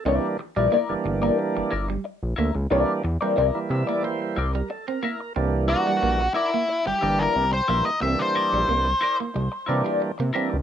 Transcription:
X:1
M:4/4
L:1/16
Q:1/4=90
K:Cmix
V:1 name="Lead electric guitar"
z16 | z16 | z2 ^F4 E3 G2 B2 c2 _e | e c6 z8 z |]
V:2 name="Clean electric guitar"
[EBd] z2 [EBd] [EBd] z2 [EBd] z2 [EBd] z3 [EBe] z | [EBd] z2 [EBd] [EBd] z2 [EBd] z2 [EBd] z3 [EBe] z | z2 [EBd] z3 [EBd] z3 [EBd] [EBd] z2 [EBe] z | z2 [EBd] z3 [EBd] z3 [EBd] [EBd] z2 [EBe] z |]
V:3 name="Clean electric guitar"
C z2 G, B, z2 B, z G, z G, z2 B, z | C z2 G, G, z2 B, G, z2 G, z C B, z | C z2 G, B, z2 B, z G, z G, z2 B, z | C z2 G, B, z2 B, G, z2 G, z B, C z |]
V:4 name="Tonewheel organ"
z16 | z6 e d c c2 B A B3 | z16 | z16 |]
V:5 name="Tonewheel organ"
[E,G,B,D]2 z [E,G,B,D] z [E,G,B,D]4- [E,G,B,D] z6 | [E,G,B,D]2 z [E,G,B,C] z [E,G,B,E]4- [E,G,B,E] z6 | [E,G,B,D]4- [E,G,B,D] z4 z [E,G,B,D]3 z [E,G,B,E] z | [E,G,B,CD]4- [E,G,B,CD] z4 z [E,G,B,D]3 z [E,G,B,D] z |]
V:6 name="Analog synth bass" clef=bass
C,, z2 B,,, z G,,, G,,,2 z G,,, G,,,2 z B,,, D,, _D,, | C,, z E,, z C,, z C, z3 C,,2 z4 | C,,3 z B,,,2 z3 G,,, G,,,2 C,,2 B,,, z | C,, z2 B,,, C,,2 z2 C,, z C, z2 C, z _D,, |]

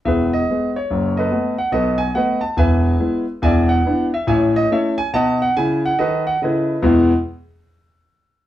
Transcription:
X:1
M:4/4
L:1/8
Q:"Swing" 1/4=142
K:E
V:1 name="Grand piano"
[GBe] d2 c2 [ABd]2 f | [ABd] g [Bdf] a [Beg]3 z | [=deg] f2 e [ceg] ^d [Ace] g | [dfa] f g f [ABd] f [ABd]2 |
[E,,B,,G,B,EGe] z6 z |]
V:2 name="Grand piano"
[E,,,E,,]2 [G,B,G]2 [F,,,F,,]2 [A,B,F]2 | [B,,,B,,]2 [A,B,F]2 [E,,,E,,]2 [G,B,E]2 | [E,,,E,,]2 [B,=DE]2 [A,,,A,,]2 [A,CE]2 | [B,,D]2 [C,E]2 [D,F]2 [C,E]2 |
z8 |]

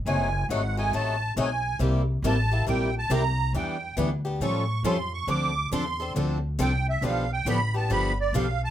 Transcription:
X:1
M:4/4
L:1/8
Q:"Swing" 1/4=138
K:Dm
V:1 name="Accordion"
_a2 ^f a =a2 _a2 | z2 a2 g a b2 | g2 z2 ^c'2 =c' ^c' | d'2 c'2 z2 g e |
f g =b a b d f a |]
V:2 name="Steel-string acoustic guitar"
[C,^F,A,^D^F] z [C,F,A,DF] [A,DF] [C,F,A,DF] z [C,F,A,DF] z | [C,G,B,EG] z [C,G,B,EG] [B,EG] [C,G,B,EG] z [C,G,B,EG] z | [E,=B,DG] z [E,B,DG] [B,DG] [^E,G,^C^EA] z [E,G,CEA] z | [D,F,CDA] z [D,F,CDA] [CDA] [D,F,CDA] z [D,F,CDA] z |
[D,F,=B,DG] z [D,F,B,DG] [B,DG] [D,F,B,DG] z [D,F,B,DG] z |]
V:3 name="Steel-string acoustic guitar"
z8 | [C,G,B,EG] z [C,G,B,EG] z [C,G,B,EG] z [C,G,B,EG] z | [E,G,DE=B] z [E,G,DEB] z [^E,G,^C^EA] z [E,G,CEA] z | [D,F,CDA] z [D,F,CDA] z [D,F,CDA] z [D,F,CDA] z |
[D,F,=B,DG] z [D,F,B,DG] z [D,F,B,DG] z [D,F,B,DG] z |]
V:4 name="Upright bass" clef=bass
^F,,,2 _A,,,2 =A,,,2 =B,,,2 | C,,2 A,,,2 B,,,2 C,,2 | E,,2 D,,2 A,,2 ^E,,2 | D,,2 E,,2 D,,2 C,,2 |
=B,,,2 A,,,2 G,,,2 B,,,2 |]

